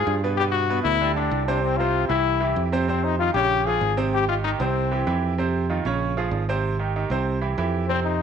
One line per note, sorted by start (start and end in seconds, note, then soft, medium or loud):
0.00 0.18 F3 medium
0.00 0.18 F4 medium
0.00 0.19 G#4 medium
0.00 0.19 G#4 loud
0.07 0.80 G2 loud
0.24 0.36 B2 medium
0.24 0.36 B3 medium
0.24 0.37 B4 medium
0.37 0.64 B2 medium
0.37 0.65 B3 medium
0.37 0.45 G4 loud
0.37 0.65 B4 medium
0.51 0.82 F#4 loud
0.70 0.95 B2 medium
0.70 0.96 B3 medium
0.70 0.96 B4 loud
0.83 1.28 D2 loud
0.83 1.13 E4 loud
1.01 1.14 D3 medium
1.01 1.14 D4 medium
1.01 1.14 G4 medium
1.15 1.42 D3 medium
1.15 1.45 D4 medium
1.15 1.42 D4 medium
1.15 1.42 G4 medium
1.31 2.04 C2 loud
1.46 1.73 C3 loud
1.46 1.74 C4 medium
1.46 1.63 D4 medium
1.46 1.74 C5 loud
1.61 1.79 C4 loud
1.78 2.05 C3 medium
1.78 2.05 C4 medium
1.78 2.08 F4 medium
1.78 2.05 C5 medium
2.09 2.53 C2 loud
2.09 2.35 E3 medium
2.09 2.68 E4 loud
2.09 2.36 E4 medium
2.09 2.36 G4 medium
2.40 2.66 E3 medium
2.40 2.66 E4 medium
2.40 2.66 G4 medium
2.56 3.29 F2 medium
2.72 2.85 C3 loud
2.72 2.85 C4 medium
2.72 2.86 C5 loud
2.88 3.14 C3 medium
2.88 3.06 C4 medium
2.88 3.14 C4 medium
2.88 3.14 C5 medium
3.04 3.19 D#4 medium
3.19 3.33 D#3 medium
3.19 3.33 D#4 medium
3.19 3.34 F4 loud
3.19 3.33 F4 medium
3.34 3.78 A#1 medium
3.34 3.61 C#3 medium
3.34 3.61 C#4 medium
3.34 3.68 G4 loud
3.34 3.61 C#5 medium
3.67 3.92 F3 medium
3.67 3.92 F4 medium
3.67 3.92 G#4 medium
3.67 3.98 G#4 loud
3.81 4.54 G#1 medium
3.97 4.23 C3 loud
3.97 4.23 C4 loud
3.97 4.23 C5 loud
4.14 4.28 G4 loud
4.28 4.41 D#3 medium
4.28 4.41 D#4 medium
4.28 4.36 F4 medium
4.28 4.42 G4 medium
4.44 4.57 D#3 medium
4.44 4.51 D#4 medium
4.44 4.57 D#4 medium
4.44 4.57 G4 medium
4.60 5.03 C2 loud
4.60 4.85 C3 medium
4.60 5.18 C4 medium
4.60 4.86 C4 medium
4.60 4.86 C5 medium
4.91 5.04 E3 medium
4.91 5.04 E4 medium
4.91 5.04 G4 medium
5.07 5.79 F2 loud
5.07 5.32 E3 medium
5.07 5.32 E4 medium
5.07 5.32 G4 medium
5.38 5.64 C3 medium
5.38 5.64 C4 medium
5.38 5.64 C5 medium
5.69 5.82 D#3 medium
5.69 5.82 D#4 medium
5.69 5.82 F4 medium
5.85 6.29 A#1 medium
5.85 6.11 C#3 medium
5.85 6.11 C#4 medium
5.85 6.11 C#5 medium
6.17 6.42 F3 medium
6.17 6.42 F4 medium
6.17 6.43 G#4 medium
6.31 7.04 G#1 medium
6.49 6.74 C3 medium
6.49 6.74 C4 medium
6.49 6.74 C5 medium
6.79 6.92 D#3 medium
6.79 6.92 D#4 medium
6.79 6.92 G4 medium
6.96 7.08 D#3 medium
6.96 7.08 D#4 medium
6.96 7.08 G4 medium
7.10 7.54 C2 loud
7.10 7.36 C3 medium
7.10 7.36 C4 medium
7.10 7.37 C5 medium
7.41 7.54 E3 medium
7.41 7.54 E4 medium
7.41 7.55 G4 medium
7.58 8.22 F2 medium
7.58 7.83 E3 medium
7.58 7.83 E4 medium
7.58 7.84 G4 medium
7.88 8.15 C3 medium
7.88 8.03 C4 loud
7.88 8.15 C4 medium
7.88 8.15 C5 medium
8.04 8.22 D#4 medium